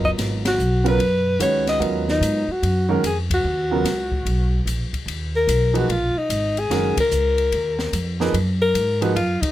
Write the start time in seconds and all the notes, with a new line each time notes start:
Already playing: F#1 F#3 B3 F4 A#4 D#5
0.04 D#5, kick
0.18 G#1, snare, ride
0.45 F#4, snare, ride
0.58 B1, hi-hat pedal
0.84 C#3 F#3 B3 F4 A#4, ride
0.88 B4
0.99 F#2, ride
1.39 C#2 D#3 G#3 C#4 F#4 B4 C#5, hi-hat pedal, ride
1.67 D#5, snare, ride
1.80 D#2 F#3 B3 F4 A#4 D#5, ride
2.08 D#4, snare
2.21 G#2, hi-hat pedal, ride
2.48 F#4, muted upright bass stroke
2.63 F#2, ride
2.89 D#3 G#3 C#4 F#4 A#4
3.03 F2 G#4, hi-hat pedal, ride
3.30 F#4, kick, ride
3.44 D#2
3.71 C#3 F#3 B3 F4 A#4
3.84 C#2, snare, hi-hat pedal, ride
4.12 kick
4.25 B1, ride
4.66 A#1, hi-hat pedal, ride
4.93 muted upright bass stroke, kick, ride
5.06 D#2, ride
5.36 A#4
5.47 B1, hi-hat pedal, ride
5.73 F3 A#3 D#4 G#4 B4, ride
5.78 F#4
5.89 A#1 F4, ride
6.15 D#4, muted upright bass stroke
6.29 G#1, hi-hat pedal, ride
6.57 G#4, ride
6.70 F#1 D#3 G#3 C#4 F#4 A#4, snare, ride
6.97 A#4, muted upright bass stroke, kick, ride
7.11 C#2, hi-hat pedal
7.38 ride
7.52 D#2, ride
7.79 snare
7.93 F2, hi-hat pedal, ride
8.20 F3 A#3 D#4 G#4 B4, snare
8.33 F#2, ride
8.62 A#4
8.74 G#2, hi-hat pedal, ride
9.01 F3 A#3 D#4 F#4 G#4 B4, ride
9.15 F#2 F4, ride
9.41 D#4, muted upright bass stroke, kick, ride